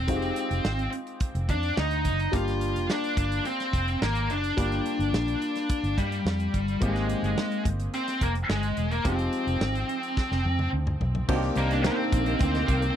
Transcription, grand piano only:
0.07 2.29 G#3 medium
0.07 2.29 C4 medium
0.07 2.29 D#4 medium
0.07 2.30 F4 soft
0.07 0.16 F#4 soft
0.17 2.32 G4 medium
2.32 4.53 G3 medium
2.32 4.53 A#3 soft
2.32 4.53 D4 medium
2.32 4.54 F4 medium
2.32 4.54 G4 medium
4.57 6.77 G3 medium
4.57 6.78 A#3 medium
4.57 6.78 D4 medium
4.57 6.78 F4 soft
4.57 6.78 G4 medium
6.80 9.01 G#3 medium
6.80 9.01 A#3 medium
6.80 9.02 C4 medium
6.80 9.02 D#4 medium
6.80 9.02 G4 medium
9.04 11.24 F3 medium
9.04 11.25 G#3 soft
9.04 11.25 C4 medium
9.04 11.25 D#4 medium
9.04 11.25 G4 medium
11.29 11.79 D#3 medium
11.29 11.79 A#3 medium
11.29 11.79 C4 medium
11.29 11.79 D4 medium
11.29 11.36 F#4 medium
11.36 11.83 G4 loud
11.84 12.84 D#3 medium
11.84 12.85 A#3 medium
11.84 12.85 C4 medium
11.84 12.85 D4 medium
11.84 12.85 A#4 medium

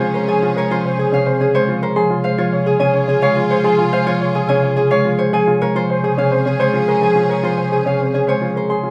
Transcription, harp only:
0.00 0.98 G#4 medium
0.00 0.14 C5 medium
0.00 0.56 C#5 loud
0.00 1.12 F5 medium
0.00 0.27 G#5 medium
0.15 0.70 C5 medium
0.28 2.79 G#5 medium
0.58 1.53 C#5 medium
0.71 1.81 C5 medium
0.99 1.39 G#4 medium
1.14 2.23 F5 medium
1.41 2.65 G#4 medium
1.55 2.37 C#5 medium
1.83 1.99 C5 medium
1.96 3.63 C6 medium
2.24 3.21 F5 medium
2.38 3.49 C#5 medium
2.66 3.08 G#4 medium
2.80 4.47 G#5 medium
3.09 4.33 G#4 medium
3.22 3.91 F5 loud
3.51 4.05 C#5 medium
3.64 5.35 C6 medium
3.93 4.89 F5 loud
4.07 5.17 C#5 loud
4.35 4.75 G#4 medium
4.49 5.32 G#5 loud
4.76 6.03 G#4 medium
4.91 6.17 F5 loud
5.18 5.60 C#5 medium
5.34 7.02 G#5 medium
5.61 6.59 C#5 medium
5.76 6.87 C5 loud
6.04 6.46 G#4 medium
6.18 7.86 F5 medium
6.47 7.71 G#4 medium
6.60 7.30 C#5 loud
6.89 7.43 C5 medium
7.03 8.90 G#5 medium
7.31 8.27 C#5 medium
7.44 8.56 C5 medium
7.73 8.13 G#4 medium
7.87 8.90 F5 medium
8.14 8.90 G#4 medium
8.29 8.90 C#5 medium
8.57 8.72 C5 medium
8.70 8.90 C6 medium

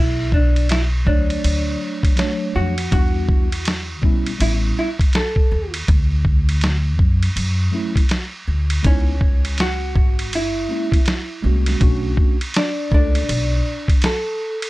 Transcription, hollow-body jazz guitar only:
0.00 0.33 E4 medium
0.34 0.70 D4 medium
0.71 0.81 E4 medium
1.07 2.60 D4 medium
2.56 2.92 F#4 medium
2.93 4.45 F#4 medium
4.42 4.51 E4 medium
4.79 4.89 E4 medium
5.17 5.71 A4 medium
8.87 9.56 C#4 medium
9.61 10.36 F#4 loud
10.35 11.41 E4 medium
12.57 12.93 D4 medium
12.94 14.08 D4 medium
14.06 14.70 A4 medium

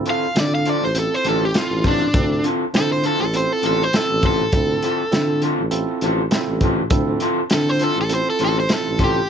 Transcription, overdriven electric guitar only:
0.10 0.37 F5 medium
0.40 0.53 D5 medium
0.55 0.69 F5 medium
0.69 0.83 D5 medium
0.85 0.97 C5 medium
0.99 1.14 A4 medium
1.14 1.26 C5 medium
1.29 1.43 A4 medium
1.45 1.58 G4 medium
1.58 1.85 F4 medium
1.88 2.44 D4 medium
2.77 2.91 A4 loud
2.92 3.05 C5 medium
3.07 3.20 A4 medium
3.21 3.34 A4 loud
3.37 3.53 C5 medium
3.53 3.65 A4 medium
3.66 3.83 A4 loud
3.83 3.96 C5 medium
3.96 4.24 A4 medium
4.26 5.40 A4 loud
7.54 7.69 A4 loud
7.69 7.84 C5 medium
7.84 7.97 A4 medium
8.01 8.12 A4 medium
8.14 8.28 C5 medium
8.30 8.42 A4 medium
8.45 8.58 A4 medium
8.60 8.71 C5 medium
8.74 9.01 A4 medium
9.04 9.29 G4 loud

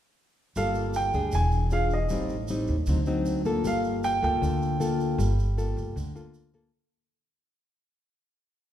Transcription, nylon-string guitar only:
0.57 1.32 G3 soft
0.57 1.11 A#3 soft
0.57 1.11 F4 soft
0.57 1.12 A4 medium
1.14 1.69 D4 medium
1.14 1.69 G#4 medium
1.33 2.09 E3 soft
1.72 1.98 D4 medium
1.72 1.98 F4 medium
1.72 1.98 G#4 medium
2.10 2.86 A2 soft
2.10 2.35 G3 soft
2.10 2.35 C4 soft
2.10 2.36 D#4 medium
2.50 2.76 G3 soft
2.50 2.76 C4 soft
2.50 2.76 D#4 medium
2.88 3.63 D3 medium
2.88 2.99 F#3 medium
2.88 3.00 C4 soft
2.88 3.00 D#4 medium
3.07 3.42 F#3 medium
3.07 3.43 C4 medium
3.07 3.43 D#4 medium
3.45 4.20 A#3 medium
3.45 4.20 F4 medium
3.45 4.20 A4 medium
3.65 4.40 G3 soft
4.23 4.77 A#3 medium
4.23 4.78 F4 medium
4.23 4.78 A4 medium
4.41 5.17 D3 medium
4.80 5.32 A#3 soft
4.80 5.32 F4 medium
4.80 5.32 A4 medium
5.19 5.94 G3 medium
5.57 5.96 A#3 soft
5.57 5.96 F4 medium
5.57 5.96 A4 soft
5.96 6.71 D3 medium
6.15 6.51 A#3 medium
6.15 6.51 F4 medium
6.15 6.51 A4 medium
6.54 6.70 A#3 medium
6.54 6.71 F4 medium
6.54 6.70 A4 medium

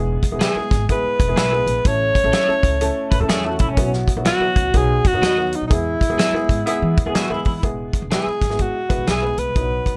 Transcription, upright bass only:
0.00 0.16 E1 loud
0.31 0.38 E1 medium
0.55 muted upright bass stroke soft
0.71 0.85 G#1 medium
1.03 muted upright bass stroke soft
1.20 1.33 E1 medium
1.36 1.60 B1 medium
1.67 1.81 A#1 medium
1.85 2.09 A1 loud
2.24 2.31 A1 medium
2.49 muted upright bass stroke soft
2.63 2.89 C#2 medium
3.11 3.18 A1 medium
3.20 3.27 E2 medium
3.29 3.61 E2 medium
3.60 3.74 C2 medium
3.77 4.01 B1 medium
4.17 4.24 B1 loud
4.40 muted upright bass stroke soft
4.56 4.70 C#2 medium
4.74 4.98 B1 loud
5.04 5.11 F#2 medium
5.13 5.20 F#2 medium
5.22 5.53 D#2 medium
5.61 5.68 B1 medium
5.71 5.94 E2 loud
6.10 6.17 E2 loud
6.33 muted upright bass stroke soft
6.49 6.63 G#2 medium
6.82 6.94 E3 loud
6.97 7.04 E2 loud
7.06 7.13 E2 medium
7.15 muted upright bass stroke soft
7.30 7.42 E2 medium
7.46 7.59 E3 medium
7.63 7.87 E1 medium
8.02 8.09 E1 medium
8.26 muted upright bass stroke soft
8.41 8.67 G#1 medium
8.90 8.97 E1 medium
8.98 9.05 B1 medium
9.07 9.31 B1 medium
9.37 9.52 C2 medium
9.55 9.79 B1 medium

